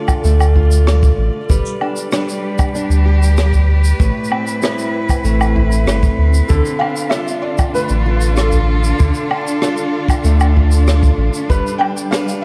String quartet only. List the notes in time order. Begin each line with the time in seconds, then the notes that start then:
Already playing: D3 A3 F4 D5
1.51 G3
2.22 G4
2.36 B4
3.99 A3
4.38 E4
4.89 C4
6.50 D3
6.73 F4
7.15 A4
7.21 D4
11.49 G3